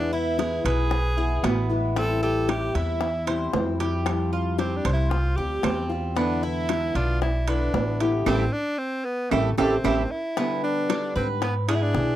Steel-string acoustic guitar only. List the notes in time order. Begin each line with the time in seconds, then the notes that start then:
Already playing: B2 E3 G#3 B3 E4
0.38 E3 G#3 B3 E4
0.91 muted steel-string acoustic guitar stroke
1.17 E3 G#3 B3 E4
1.44 E3 G#3 B3 E4
1.69 E3 G#3 B3 E4
1.96 E3 G3 C4 E4
2.48 E3 G3 C4 E4
3.00 muted steel-string acoustic guitar stroke
3.27 G3 C4 E4
3.54 E3 G3 C4 E4
3.80 G3 C4 E4
4.06 F3 G3 C4 F4
4.58 F3 G3 C4 F4
5.12 muted steel-string acoustic guitar stroke
5.37 G3 C4 F4
5.63 F3 G3 C4 F4
5.89 G3 C4 F4
6.16 B2 D3 G#3 B3 E4
6.68 D3 G#3 B3 E4
7.21 muted steel-string acoustic guitar stroke
7.47 D3 G#3 B3 E4
7.73 D3 G#3 B3 E4
8.00 D3 G#3 B3 E4
8.27 G3 A3 C4
9.32 G3 A3 C4
9.58 G3 A3 C4
9.85 G3 A3 C4
10.37 B2 D3 G3 B3 G4
10.90 D3 G3 B3 G4
11.42 muted steel-string acoustic guitar stroke
11.68 B3 E4
11.95 G#3 B3 E4